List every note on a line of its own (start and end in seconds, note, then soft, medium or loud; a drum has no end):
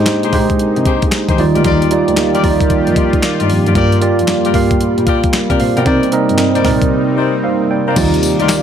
0.00 0.33 G#3 medium
0.00 1.37 G#3 medium
0.00 7.92 A#3 medium
0.00 1.40 D4 medium
0.00 0.34 D#4 medium
0.00 1.37 D#4 medium
0.00 0.34 G4 medium
0.00 0.34 C5 loud
0.06 snare loud
0.06 clap medium
0.06 closed hi-hat medium
0.23 0.31 A#2 soft
0.23 0.36 D#4 medium
0.23 0.36 G4 medium
0.23 0.36 G#4 medium
0.23 0.36 C5 medium
0.23 closed hi-hat medium
0.33 0.47 A#2 medium
0.33 1.09 G#3 medium
0.33 1.09 D#4 medium
0.33 1.09 G4 medium
0.33 1.10 C5 medium
0.33 kick medium
0.33 open hi-hat medium
0.50 kick medium
0.50 closed hi-hat medium
0.59 0.72 C3 soft
0.59 closed hi-hat medium
0.76 0.99 C3 medium
0.76 closed hi-hat soft
0.85 1.04 D#4 medium
0.85 1.04 G4 medium
0.85 1.04 G#4 medium
0.85 1.04 C5 medium
0.85 kick medium
0.85 closed hi-hat medium
1.02 kick medium
1.02 closed hi-hat soft
1.12 snare loud
1.12 clap medium
1.12 closed hi-hat medium
1.29 1.37 D#3 medium
1.29 1.41 D#4 medium
1.29 1.42 G4 medium
1.29 1.42 G#4 medium
1.29 1.42 C5 medium
1.29 kick medium
1.29 closed hi-hat medium
1.38 1.53 D#2 medium
1.38 3.73 D#3 medium
1.38 1.84 G3 medium
1.38 1.84 D#4 medium
1.38 5.82 F4 medium
1.38 1.84 F4 medium
1.38 3.73 G4 medium
1.38 3.73 D5 medium
1.38 1.84 D5 medium
1.38 open hi-hat medium
1.55 1.63 D2 medium
1.55 1.63 D#4 medium
1.55 1.63 F4 medium
1.55 1.63 G4 medium
1.55 1.64 D5 medium
1.55 closed hi-hat medium
1.64 1.87 D#2 loud
1.64 1.89 D#4 loud
1.64 1.89 F4 medium
1.64 1.90 G4 medium
1.64 1.90 D5 loud
1.64 kick loud
1.64 closed hi-hat medium
1.82 closed hi-hat medium
1.91 2.32 G3 medium
1.91 2.32 D#4 medium
1.91 2.32 F4 medium
1.91 2.32 D5 medium
1.91 closed hi-hat medium
2.08 2.16 D2 medium
2.08 closed hi-hat soft
2.17 snare loud
2.17 clap medium
2.17 closed hi-hat medium
2.34 2.42 D#2 soft
2.34 2.47 D#4 medium
2.34 2.47 F4 medium
2.34 2.47 G4 medium
2.34 2.47 D5 medium
2.34 closed hi-hat medium
2.43 2.58 D#2 medium
2.43 3.20 G3 medium
2.43 3.20 D#4 medium
2.43 3.20 F4 medium
2.43 3.20 D5 loud
2.43 kick medium
2.43 open hi-hat medium
2.61 kick medium
2.61 closed hi-hat medium
2.70 2.83 F2 soft
2.70 kick medium
2.70 closed hi-hat medium
2.87 3.10 F2 medium
2.87 closed hi-hat soft
2.96 3.15 D#4 medium
2.96 3.15 F4 medium
2.96 3.15 G4 medium
2.96 3.15 D5 medium
2.96 kick medium
2.96 closed hi-hat medium
3.13 kick medium
3.13 closed hi-hat soft
3.23 snare loud
3.23 clap medium
3.23 closed hi-hat medium
3.39 3.48 G2 medium
3.39 3.52 D#4 medium
3.39 3.52 F4 medium
3.39 3.52 G4 medium
3.39 3.52 D5 medium
3.39 closed hi-hat medium
3.50 3.64 F2 medium
3.50 open hi-hat medium
3.66 3.74 F#2 medium
3.66 3.78 D#4 medium
3.66 3.74 F4 medium
3.66 3.74 G4 medium
3.66 3.74 D5 medium
3.66 closed hi-hat soft
3.75 3.98 G2 loud
3.75 5.84 G3 medium
3.75 3.96 A#3 medium
3.75 4.00 F4 medium
3.75 3.96 F4 medium
3.75 4.00 G4 medium
3.75 3.96 G4 medium
3.75 4.00 A#4 medium
3.75 4.00 D5 loud
3.75 3.97 D5 loud
3.75 kick loud
3.75 closed hi-hat medium
3.92 closed hi-hat medium
4.01 4.42 A#3 medium
4.01 4.42 F4 medium
4.01 4.42 G4 medium
4.01 4.42 D5 medium
4.01 closed hi-hat medium
4.19 4.27 F2 medium
4.19 closed hi-hat soft
4.28 snare loud
4.28 clap medium
4.28 closed hi-hat medium
4.44 4.53 G2 soft
4.44 4.57 F4 medium
4.44 4.57 G4 medium
4.44 4.57 A#4 medium
4.44 4.57 D5 medium
4.44 closed hi-hat medium
4.54 4.68 G2 medium
4.54 5.30 A#3 medium
4.54 5.30 F4 medium
4.54 5.31 G4 medium
4.54 5.31 F5 loud
4.54 kick medium
4.54 open hi-hat medium
4.71 kick medium
4.71 closed hi-hat medium
4.81 4.94 A#2 soft
4.81 closed hi-hat medium
4.98 5.20 A#2 medium
4.98 closed hi-hat soft
5.06 5.25 F4 medium
5.06 5.25 G4 medium
5.06 5.26 A#4 medium
5.06 5.26 D5 medium
5.06 kick loud
5.06 closed hi-hat medium
5.24 kick medium
5.24 closed hi-hat soft
5.33 snare loud
5.33 clap medium
5.33 closed hi-hat medium
5.50 5.58 C3 medium
5.50 5.62 F4 medium
5.50 5.63 G4 medium
5.50 5.60 G4 medium
5.50 5.63 A#4 medium
5.50 5.63 D5 medium
5.50 5.59 D5 medium
5.50 kick medium
5.50 closed hi-hat medium
5.60 5.74 A#2 medium
5.60 5.76 C5 medium
5.60 5.76 F5 medium
5.60 open hi-hat medium
5.76 5.85 B2 medium
5.76 5.89 F4 medium
5.76 5.89 G4 medium
5.76 5.84 A#4 medium
5.76 5.85 D5 medium
5.76 5.86 D5 medium
5.76 6.02 G5 medium
5.76 closed hi-hat medium
5.85 6.08 C3 loud
5.85 7.95 C3 medium
5.85 7.94 G3 medium
5.85 6.07 C4 medium
5.85 7.94 C4 medium
5.85 6.10 D#4 loud
5.85 7.94 D#4 medium
5.85 6.07 D#4 medium
5.85 6.10 A#4 medium
5.85 6.07 A#4 medium
5.85 6.11 C5 medium
5.85 6.11 D5 loud
5.85 6.07 D5 loud
5.85 kick loud
5.85 closed hi-hat medium
6.03 closed hi-hat medium
6.12 6.53 C4 medium
6.12 6.53 D#4 medium
6.12 6.53 A#4 medium
6.12 6.53 D#5 medium
6.12 closed hi-hat medium
6.29 6.37 G2 medium
6.29 closed hi-hat soft
6.38 snare loud
6.38 clap medium
6.38 closed hi-hat medium
6.55 6.63 A#2 soft
6.55 6.68 D#4 medium
6.55 6.68 A#4 medium
6.55 6.68 C5 medium
6.55 6.68 D5 medium
6.55 closed hi-hat medium
6.65 6.79 A#2 medium
6.65 7.41 C4 medium
6.65 7.41 D#4 medium
6.65 7.41 A#4 medium
6.65 7.41 D5 medium
6.65 kick medium
6.65 snare medium
6.65 open hi-hat medium
6.82 kick medium
6.82 closed hi-hat medium
7.17 7.36 D#4 medium
7.17 7.36 A#4 medium
7.17 7.36 C5 medium
7.17 7.36 D5 medium
7.44 7.69 C5 medium
7.44 7.69 F5 medium
7.71 7.87 D5 medium
7.71 7.87 G5 medium
7.87 7.99 D#4 medium
7.87 7.99 A#4 medium
7.87 8.00 C5 medium
7.87 8.00 D5 medium
7.87 8.13 F5 medium
7.87 8.12 A#5 medium
7.96 8.19 D#2 loud
7.96 8.62 D#3 medium
7.96 8.62 G3 medium
7.96 8.62 A#3 medium
7.96 8.62 D#4 medium
7.96 8.62 F4 medium
7.96 8.62 G4 medium
7.96 8.62 D5 medium
7.96 kick loud
7.96 closed hi-hat medium
7.96 crash loud
7.96 tambourine medium
8.14 closed hi-hat medium
8.23 closed hi-hat medium
8.23 tambourine medium
8.39 8.48 D2 medium
8.39 8.52 D#4 medium
8.39 8.52 F4 medium
8.39 8.52 G4 medium
8.39 8.52 D5 medium
8.39 closed hi-hat soft
8.49 snare loud
8.49 clap medium
8.49 closed hi-hat medium
8.49 tambourine medium